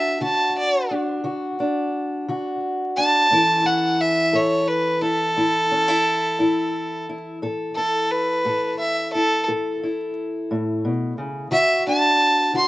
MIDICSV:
0, 0, Header, 1, 3, 480
1, 0, Start_track
1, 0, Key_signature, 3, "major"
1, 0, Tempo, 684932
1, 2310, Time_signature, 12, 3, 24, 8
1, 8885, End_track
2, 0, Start_track
2, 0, Title_t, "Fiddle"
2, 0, Program_c, 0, 110
2, 0, Note_on_c, 0, 76, 73
2, 150, Note_off_c, 0, 76, 0
2, 159, Note_on_c, 0, 81, 80
2, 386, Note_off_c, 0, 81, 0
2, 405, Note_on_c, 0, 74, 85
2, 630, Note_off_c, 0, 74, 0
2, 2078, Note_on_c, 0, 81, 102
2, 2565, Note_on_c, 0, 78, 83
2, 2575, Note_off_c, 0, 81, 0
2, 2807, Note_on_c, 0, 76, 83
2, 2818, Note_off_c, 0, 78, 0
2, 3052, Note_on_c, 0, 73, 82
2, 3063, Note_off_c, 0, 76, 0
2, 3276, Note_on_c, 0, 71, 83
2, 3287, Note_off_c, 0, 73, 0
2, 3516, Note_on_c, 0, 69, 93
2, 3526, Note_off_c, 0, 71, 0
2, 4926, Note_off_c, 0, 69, 0
2, 5434, Note_on_c, 0, 69, 84
2, 5682, Note_on_c, 0, 71, 80
2, 5693, Note_off_c, 0, 69, 0
2, 6143, Note_off_c, 0, 71, 0
2, 6162, Note_on_c, 0, 76, 72
2, 6390, Note_off_c, 0, 76, 0
2, 6398, Note_on_c, 0, 69, 82
2, 6628, Note_off_c, 0, 69, 0
2, 8072, Note_on_c, 0, 76, 93
2, 8304, Note_off_c, 0, 76, 0
2, 8327, Note_on_c, 0, 81, 98
2, 8784, Note_off_c, 0, 81, 0
2, 8812, Note_on_c, 0, 84, 86
2, 8885, Note_off_c, 0, 84, 0
2, 8885, End_track
3, 0, Start_track
3, 0, Title_t, "Steel-string acoustic guitar"
3, 0, Program_c, 1, 25
3, 0, Note_on_c, 1, 62, 56
3, 0, Note_on_c, 1, 66, 65
3, 142, Note_off_c, 1, 66, 0
3, 145, Note_on_c, 1, 50, 67
3, 150, Note_on_c, 1, 66, 69
3, 578, Note_off_c, 1, 50, 0
3, 628, Note_off_c, 1, 62, 0
3, 637, Note_on_c, 1, 62, 60
3, 864, Note_off_c, 1, 66, 0
3, 867, Note_on_c, 1, 50, 69
3, 872, Note_on_c, 1, 66, 56
3, 1113, Note_off_c, 1, 62, 0
3, 1121, Note_on_c, 1, 62, 63
3, 1300, Note_off_c, 1, 50, 0
3, 1591, Note_off_c, 1, 66, 0
3, 1601, Note_on_c, 1, 50, 70
3, 1606, Note_on_c, 1, 66, 68
3, 2028, Note_off_c, 1, 50, 0
3, 2076, Note_off_c, 1, 62, 0
3, 2087, Note_on_c, 1, 62, 58
3, 2290, Note_off_c, 1, 62, 0
3, 2316, Note_on_c, 1, 45, 66
3, 2317, Note_off_c, 1, 66, 0
3, 2326, Note_on_c, 1, 52, 63
3, 2330, Note_on_c, 1, 61, 62
3, 2335, Note_on_c, 1, 64, 59
3, 2339, Note_on_c, 1, 69, 65
3, 2549, Note_off_c, 1, 64, 0
3, 2552, Note_on_c, 1, 64, 54
3, 2745, Note_off_c, 1, 45, 0
3, 3031, Note_on_c, 1, 45, 72
3, 3033, Note_off_c, 1, 69, 0
3, 3035, Note_on_c, 1, 69, 65
3, 3463, Note_off_c, 1, 45, 0
3, 3514, Note_off_c, 1, 64, 0
3, 3516, Note_on_c, 1, 64, 61
3, 3760, Note_on_c, 1, 45, 63
3, 3764, Note_off_c, 1, 64, 0
3, 3767, Note_on_c, 1, 64, 55
3, 3997, Note_off_c, 1, 61, 0
3, 3999, Note_off_c, 1, 64, 0
3, 4005, Note_on_c, 1, 61, 52
3, 4120, Note_off_c, 1, 61, 0
3, 4120, Note_on_c, 1, 64, 49
3, 4188, Note_off_c, 1, 45, 0
3, 4476, Note_off_c, 1, 64, 0
3, 4477, Note_on_c, 1, 45, 74
3, 4484, Note_on_c, 1, 64, 64
3, 4906, Note_off_c, 1, 45, 0
3, 4957, Note_off_c, 1, 64, 0
3, 4971, Note_on_c, 1, 64, 56
3, 5173, Note_off_c, 1, 64, 0
3, 5201, Note_on_c, 1, 45, 69
3, 5203, Note_off_c, 1, 69, 0
3, 5206, Note_on_c, 1, 69, 68
3, 5449, Note_on_c, 1, 64, 53
3, 5628, Note_off_c, 1, 45, 0
3, 5922, Note_on_c, 1, 45, 65
3, 5924, Note_off_c, 1, 69, 0
3, 5926, Note_on_c, 1, 69, 62
3, 6349, Note_off_c, 1, 45, 0
3, 6400, Note_off_c, 1, 64, 0
3, 6412, Note_on_c, 1, 64, 57
3, 6643, Note_on_c, 1, 45, 74
3, 6644, Note_off_c, 1, 69, 0
3, 6647, Note_on_c, 1, 69, 61
3, 6881, Note_off_c, 1, 64, 0
3, 6891, Note_on_c, 1, 64, 50
3, 7069, Note_off_c, 1, 45, 0
3, 7364, Note_on_c, 1, 45, 60
3, 7597, Note_off_c, 1, 45, 0
3, 7601, Note_on_c, 1, 47, 57
3, 7831, Note_off_c, 1, 47, 0
3, 7834, Note_on_c, 1, 49, 62
3, 8052, Note_off_c, 1, 64, 0
3, 8063, Note_off_c, 1, 49, 0
3, 8065, Note_on_c, 1, 50, 74
3, 8069, Note_off_c, 1, 69, 0
3, 8072, Note_on_c, 1, 66, 70
3, 8079, Note_off_c, 1, 52, 0
3, 8318, Note_on_c, 1, 62, 57
3, 8500, Note_off_c, 1, 50, 0
3, 8784, Note_on_c, 1, 50, 69
3, 8792, Note_off_c, 1, 66, 0
3, 8795, Note_on_c, 1, 66, 66
3, 8885, Note_off_c, 1, 50, 0
3, 8885, Note_off_c, 1, 62, 0
3, 8885, Note_off_c, 1, 66, 0
3, 8885, End_track
0, 0, End_of_file